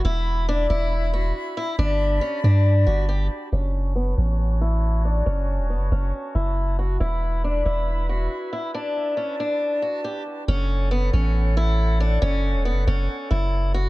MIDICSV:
0, 0, Header, 1, 4, 480
1, 0, Start_track
1, 0, Tempo, 434783
1, 51, Time_signature, 4, 2, 24, 8
1, 15337, End_track
2, 0, Start_track
2, 0, Title_t, "Flute section"
2, 0, Program_c, 0, 73
2, 50, Note_on_c, 0, 64, 89
2, 50, Note_on_c, 0, 83, 94
2, 51, Note_on_c, 0, 76, 80
2, 1951, Note_off_c, 0, 64, 0
2, 1952, Note_off_c, 0, 76, 0
2, 1970, Note_on_c, 0, 67, 84
2, 1970, Note_on_c, 0, 74, 79
2, 1970, Note_on_c, 0, 81, 75
2, 3852, Note_off_c, 0, 83, 0
2, 3871, Note_off_c, 0, 67, 0
2, 3871, Note_off_c, 0, 74, 0
2, 3871, Note_off_c, 0, 81, 0
2, 3890, Note_on_c, 0, 73, 71
2, 3891, Note_on_c, 0, 66, 79
2, 3891, Note_on_c, 0, 81, 72
2, 3891, Note_on_c, 0, 85, 88
2, 7378, Note_off_c, 0, 85, 0
2, 7457, Note_off_c, 0, 73, 0
2, 7692, Note_off_c, 0, 66, 0
2, 7693, Note_off_c, 0, 81, 0
2, 7730, Note_on_c, 0, 71, 75
2, 7731, Note_on_c, 0, 64, 83
2, 7731, Note_on_c, 0, 76, 74
2, 7731, Note_on_c, 0, 83, 90
2, 9632, Note_off_c, 0, 76, 0
2, 9632, Note_off_c, 0, 83, 0
2, 9650, Note_on_c, 0, 81, 90
2, 9651, Note_on_c, 0, 74, 75
2, 11257, Note_off_c, 0, 74, 0
2, 11532, Note_off_c, 0, 64, 0
2, 11532, Note_off_c, 0, 71, 0
2, 11551, Note_off_c, 0, 81, 0
2, 11570, Note_on_c, 0, 73, 78
2, 11570, Note_on_c, 0, 78, 95
2, 11571, Note_on_c, 0, 69, 85
2, 15337, Note_off_c, 0, 69, 0
2, 15337, Note_off_c, 0, 73, 0
2, 15337, Note_off_c, 0, 78, 0
2, 15337, End_track
3, 0, Start_track
3, 0, Title_t, "Steel-string acoustic guitar"
3, 0, Program_c, 1, 25
3, 52, Note_on_c, 1, 64, 106
3, 503, Note_off_c, 1, 64, 0
3, 536, Note_on_c, 1, 62, 86
3, 729, Note_off_c, 1, 62, 0
3, 771, Note_on_c, 1, 64, 87
3, 1222, Note_off_c, 1, 64, 0
3, 1253, Note_on_c, 1, 66, 82
3, 1703, Note_off_c, 1, 66, 0
3, 1734, Note_on_c, 1, 64, 89
3, 1928, Note_off_c, 1, 64, 0
3, 1973, Note_on_c, 1, 62, 105
3, 2423, Note_off_c, 1, 62, 0
3, 2442, Note_on_c, 1, 61, 82
3, 2641, Note_off_c, 1, 61, 0
3, 2695, Note_on_c, 1, 62, 82
3, 3145, Note_off_c, 1, 62, 0
3, 3164, Note_on_c, 1, 66, 73
3, 3362, Note_off_c, 1, 66, 0
3, 3408, Note_on_c, 1, 67, 82
3, 3604, Note_off_c, 1, 67, 0
3, 3893, Note_on_c, 1, 61, 100
3, 4343, Note_off_c, 1, 61, 0
3, 4367, Note_on_c, 1, 59, 80
3, 4564, Note_off_c, 1, 59, 0
3, 4613, Note_on_c, 1, 61, 68
3, 5063, Note_off_c, 1, 61, 0
3, 5093, Note_on_c, 1, 64, 85
3, 5543, Note_off_c, 1, 64, 0
3, 5574, Note_on_c, 1, 62, 78
3, 5768, Note_off_c, 1, 62, 0
3, 5809, Note_on_c, 1, 61, 98
3, 6261, Note_off_c, 1, 61, 0
3, 6290, Note_on_c, 1, 59, 74
3, 6486, Note_off_c, 1, 59, 0
3, 6534, Note_on_c, 1, 61, 80
3, 6984, Note_off_c, 1, 61, 0
3, 7010, Note_on_c, 1, 64, 75
3, 7461, Note_off_c, 1, 64, 0
3, 7493, Note_on_c, 1, 66, 81
3, 7688, Note_off_c, 1, 66, 0
3, 7732, Note_on_c, 1, 64, 100
3, 8183, Note_off_c, 1, 64, 0
3, 8216, Note_on_c, 1, 62, 77
3, 8409, Note_off_c, 1, 62, 0
3, 8451, Note_on_c, 1, 64, 80
3, 8902, Note_off_c, 1, 64, 0
3, 8934, Note_on_c, 1, 66, 79
3, 9384, Note_off_c, 1, 66, 0
3, 9413, Note_on_c, 1, 64, 84
3, 9607, Note_off_c, 1, 64, 0
3, 9654, Note_on_c, 1, 62, 99
3, 10104, Note_off_c, 1, 62, 0
3, 10123, Note_on_c, 1, 61, 75
3, 10321, Note_off_c, 1, 61, 0
3, 10376, Note_on_c, 1, 62, 81
3, 10825, Note_off_c, 1, 62, 0
3, 10843, Note_on_c, 1, 66, 70
3, 11042, Note_off_c, 1, 66, 0
3, 11087, Note_on_c, 1, 67, 76
3, 11284, Note_off_c, 1, 67, 0
3, 11573, Note_on_c, 1, 61, 108
3, 12023, Note_off_c, 1, 61, 0
3, 12045, Note_on_c, 1, 59, 86
3, 12243, Note_off_c, 1, 59, 0
3, 12292, Note_on_c, 1, 61, 71
3, 12743, Note_off_c, 1, 61, 0
3, 12772, Note_on_c, 1, 64, 92
3, 13222, Note_off_c, 1, 64, 0
3, 13252, Note_on_c, 1, 62, 81
3, 13447, Note_off_c, 1, 62, 0
3, 13488, Note_on_c, 1, 61, 108
3, 13941, Note_off_c, 1, 61, 0
3, 13969, Note_on_c, 1, 59, 78
3, 14165, Note_off_c, 1, 59, 0
3, 14213, Note_on_c, 1, 61, 85
3, 14663, Note_off_c, 1, 61, 0
3, 14689, Note_on_c, 1, 64, 81
3, 15141, Note_off_c, 1, 64, 0
3, 15173, Note_on_c, 1, 66, 86
3, 15337, Note_off_c, 1, 66, 0
3, 15337, End_track
4, 0, Start_track
4, 0, Title_t, "808-style bass"
4, 0, Program_c, 2, 38
4, 51, Note_on_c, 2, 28, 109
4, 742, Note_off_c, 2, 28, 0
4, 771, Note_on_c, 2, 28, 108
4, 1462, Note_off_c, 2, 28, 0
4, 1971, Note_on_c, 2, 31, 112
4, 2432, Note_off_c, 2, 31, 0
4, 2691, Note_on_c, 2, 43, 106
4, 3152, Note_off_c, 2, 43, 0
4, 3170, Note_on_c, 2, 31, 107
4, 3631, Note_off_c, 2, 31, 0
4, 3890, Note_on_c, 2, 30, 107
4, 4582, Note_off_c, 2, 30, 0
4, 4611, Note_on_c, 2, 33, 100
4, 5767, Note_off_c, 2, 33, 0
4, 5810, Note_on_c, 2, 30, 99
4, 6170, Note_on_c, 2, 28, 100
4, 6187, Note_off_c, 2, 30, 0
4, 6350, Note_on_c, 2, 30, 101
4, 6366, Note_off_c, 2, 28, 0
4, 6521, Note_off_c, 2, 30, 0
4, 6531, Note_on_c, 2, 30, 104
4, 6761, Note_off_c, 2, 30, 0
4, 7010, Note_on_c, 2, 30, 106
4, 7702, Note_off_c, 2, 30, 0
4, 7730, Note_on_c, 2, 28, 106
4, 8422, Note_off_c, 2, 28, 0
4, 8451, Note_on_c, 2, 28, 100
4, 9142, Note_off_c, 2, 28, 0
4, 11571, Note_on_c, 2, 30, 112
4, 12262, Note_off_c, 2, 30, 0
4, 12290, Note_on_c, 2, 33, 107
4, 13446, Note_off_c, 2, 33, 0
4, 13490, Note_on_c, 2, 30, 100
4, 13851, Note_on_c, 2, 28, 103
4, 13867, Note_off_c, 2, 30, 0
4, 14030, Note_on_c, 2, 30, 103
4, 14047, Note_off_c, 2, 28, 0
4, 14202, Note_off_c, 2, 30, 0
4, 14211, Note_on_c, 2, 30, 106
4, 14442, Note_off_c, 2, 30, 0
4, 14691, Note_on_c, 2, 30, 110
4, 15337, Note_off_c, 2, 30, 0
4, 15337, End_track
0, 0, End_of_file